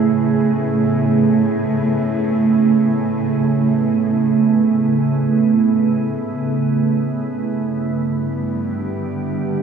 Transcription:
Already playing: cello section A2, ambient pad C#3 A3 B3 E4 G#4
7.54 cello section G2, ambient pad D3
7.70 ambient pad G3
8.27 ambient pad G4

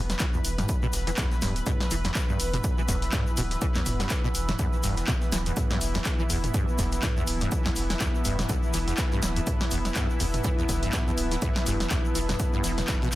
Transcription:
Already playing: sub bass E1, analog synth pad E3 B3 B4, ambient pad E4 B4 E6
0.10 snare, closed hi-hat, shaker
0.19 acid bass E3, kick, snare, clap, closed hi-hat, shaker
0.34 acid bass E2, shaker
0.45 sub bass E1, open hi-hat, shaker
0.58 acid bass G2, snare, closed hi-hat, mid tom, shaker
0.69 kick, closed hi-hat, shaker
0.82 acid bass B2, shaker
0.93 sub bass E1, snare, open hi-hat, shaker
1.07 acid bass E3, snare, closed hi-hat, shaker
1.17 acid bass E2, kick, snare, clap, closed hi-hat, shaker
1.31 snare, shaker
1.42 sub bass D1, acid bass G2, snare, open hi-hat, shaker
1.56 closed hi-hat, shaker
1.66 acid bass B2, kick, closed hi-hat, mid tom, shaker
1.80 snare, shaker
1.91 sub bass E1, acid bass E3, open hi-hat, shaker
2.04 acid bass E2, snare, closed hi-hat, shaker
2.15 kick, snare, clap, closed hi-hat, shaker
2.29 acid bass G2, shaker
2.40 sub bass E1, open hi-hat, shaker
2.54 acid bass B2, closed hi-hat, mid tom, shaker
2.64 kick, closed hi-hat, shaker
2.78 acid bass E3, shaker
2.88 sub bass E1, acid bass E2, kick, snare, open hi-hat, shaker
3.02 snare, closed hi-hat, shaker
3.12 acid bass G2, kick, snare, clap, closed hi-hat, mid tom, shaker
3.27 shaker
3.37 sub bass D1, acid bass B2, open hi-hat, shaker
3.51 snare, closed hi-hat, shaker
3.61 acid bass E3, kick, closed hi-hat, shaker
3.75 acid bass E2, snare, clap, shaker
3.86 sub bass E1, snare, mid tom, open hi-hat, shaker
4.00 acid bass G2, snare, closed hi-hat, shaker
4.10 kick, snare, clap, closed hi-hat, shaker
4.24 acid bass B2, shaker
4.35 sub bass E1, open hi-hat, shaker
4.48 acid bass E3, snare, closed hi-hat, mid tom, shaker
4.59 acid bass E2, kick, closed hi-hat, shaker
4.73 shaker
4.83 sub bass E1, acid bass G2, snare, open hi-hat, shaker
4.97 snare, closed hi-hat, shaker
5.08 acid bass B2, kick, clap, closed hi-hat, shaker
5.22 snare, shaker
5.32 sub bass D1, acid bass E3, snare, open hi-hat, shaker
5.46 acid bass E2, closed hi-hat, shaker
5.57 analog synth pad E4, kick, closed hi-hat, mid tom, shaker
5.70 acid bass G2, snare, shaker
5.81 sub bass E1, open hi-hat, shaker
5.94 acid bass E2, snare, closed hi-hat, shaker
6.05 kick, snare, clap, closed hi-hat, shaker
6.19 acid bass E3, shaker
6.30 sub bass E1, acid bass E2, open hi-hat, shaker
6.44 closed hi-hat, mid tom, shaker
6.54 acid bass G2, kick, closed hi-hat, shaker
6.68 shaker
6.73 ambient pad A5
6.78 sub bass E1, acid bass E2, kick, snare, open hi-hat, shaker
6.92 snare, closed hi-hat, shaker
7.03 acid bass E3, kick, snare, clap, closed hi-hat, mid tom, shaker
7.17 acid bass E2, shaker
7.27 sub bass D1, open hi-hat, shaker
7.41 acid bass G2, snare, closed hi-hat, shaker
7.52 kick, closed hi-hat, shaker
7.65 acid bass E2, snare, clap, shaker
7.76 sub bass E1, snare, open hi-hat, shaker
7.90 acid bass E3, snare, closed hi-hat, shaker
8.00 acid bass E2, kick, snare, clap, closed hi-hat, shaker
8.15 shaker
8.25 sub bass E1, acid bass G2, open hi-hat, shaker
8.39 snare, closed hi-hat, mid tom, shaker
8.49 acid bass E2, kick, closed hi-hat, shaker
8.63 shaker
8.73 sub bass E1, acid bass E3, snare, open hi-hat, shaker
8.88 acid bass E2, snare, closed hi-hat, shaker
8.97 kick, snare, clap, closed hi-hat, shaker
9.12 acid bass G2, snare, shaker
9.22 sub bass D1, snare, open hi-hat, shaker
9.36 acid bass E2, closed hi-hat, shaker
9.47 kick, closed hi-hat, mid tom, shaker
9.61 acid bass E3, snare, shaker
9.71 sub bass E1, acid bass E2, open hi-hat, shaker
9.85 snare, closed hi-hat, shaker
9.95 acid bass G2, kick, snare, clap, closed hi-hat, shaker
10.10 shaker
10.20 sub bass E1, acid bass E2, open hi-hat, shaker
10.34 closed hi-hat, mid tom, shaker
10.44 acid bass E3, kick, closed hi-hat, shaker
10.58 acid bass E2, shaker
10.69 sub bass E1, kick, snare, open hi-hat, shaker
10.83 acid bass G2, snare, closed hi-hat, shaker
10.93 kick, snare, clap, closed hi-hat, mid tom, shaker
11.07 acid bass E2, shaker
11.18 sub bass D1, open hi-hat, shaker
11.31 acid bass E3, snare, closed hi-hat, shaker
11.42 acid bass E2, kick, closed hi-hat, mid tom, shaker
11.55 snare, clap, shaker
11.66 sub bass E1, acid bass G2, snare, open hi-hat, shaker
11.80 snare, closed hi-hat, shaker
11.90 acid bass E2, kick, snare, clap, closed hi-hat, shaker
12.05 shaker
12.15 sub bass E1, acid bass E3, open hi-hat, shaker
12.29 acid bass E2, snare, closed hi-hat, mid tom, shaker
12.40 kick, closed hi-hat, shaker
12.53 acid bass G2, shaker
12.64 sub bass E1, acid bass E3, snare, open hi-hat, shaker
12.78 acid bass B2, snare, closed hi-hat, shaker
12.88 acid bass E1, kick, snare, clap, closed hi-hat, shaker
13.02 acid bass B2, snare, shaker
13.12 shaker

